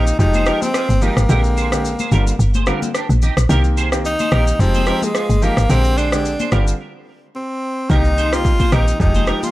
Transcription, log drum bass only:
Already playing: A#1
0.19 F1
0.89 G1
1.17 G#1
1.29 A#1
2.12 G1
2.39 G1
3.09 A#1
3.37 A#1
3.49 C2
4.32 A#1
4.59 F1
5.30 G1
5.57 G#1
5.70 A#1
6.52 G1
7.90 C2
8.72 A#1
9.00 F1

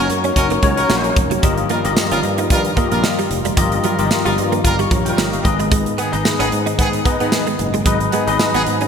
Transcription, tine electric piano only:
Already playing: C#4 F#4 A#4 C#5
0.62 C#4 F#4 A#4 C#5
1.43 G2 F4 G4 A#4 D#5
1.84 F4 G4 A#4 D#5
2.76 F4 G4 A#4 D#5
3.57 G2 F4 G4 A#4 D#5
3.98 F4 G4 A#4 D#5
4.79 F5 C#6
4.91 C#5 A#5
5.05 A#4 G5
5.18 G4 D#5
5.32 F5
5.43 G#2 D#4 G#4 B4 D#5
6.12 D#4 G#4 B4 D#5
7.05 D#4 G#4 B4 D#5
7.59 G#2
7.85 D#4 G#4 B4 D#5
8.27 D#4 G#4 B4 D#5

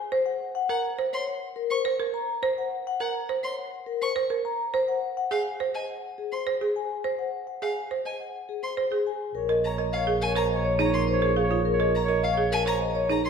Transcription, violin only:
0.69 F#5
1.13 C6
1.70 C#6
3.00 F#5
3.43 C6
4.02 C#6
5.31 F5
5.74 G#5
6.32 C6
7.62 F5
8.05 G#5
8.63 C6
9.64 A#5
9.93 F5
10.21 G#5
10.36 A#5
10.79 A#5
10.94 C6
11.95 A#5
12.24 F5
12.52 G#5
12.67 A#5
13.10 A#5
13.25 C6

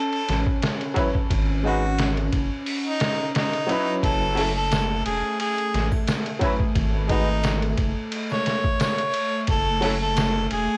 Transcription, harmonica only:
Already playing: A4
1.66 F#4
2.87 D#4
3.37 D#4
4.04 A4
4.57 A4
5.06 G#4
5.41 G#4
7.11 D#4
8.32 C#5
8.81 C#5
9.50 A4
10.03 A4
10.53 G#4

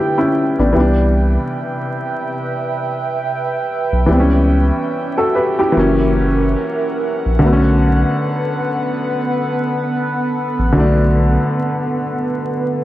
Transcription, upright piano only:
Already playing: F3 A3 B3 D4 E4 F4 G4 A4
0.18 C#4 E4
0.59 B3 D4
0.73 E3 G3
0.77 B3 D4
4.06 E3 G3
4.11 B3 C4
4.20 C#4
5.18 F#4 A4
5.35 G4 B4
5.59 E4 G4
5.72 E3 F#3
5.77 A#3 C#4
7.39 D3 F#3
7.44 A3 B3
7.53 C#4
10.72 D3 F#3
10.77 A3 D4

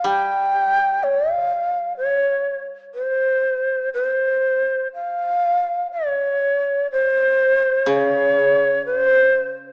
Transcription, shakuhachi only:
0.06 G5
1.03 C#5
1.34 F5
1.97 C#5
2.95 C5
3.94 C5
4.94 F5
5.92 C#5
6.92 C5
7.90 C#5
8.86 C5

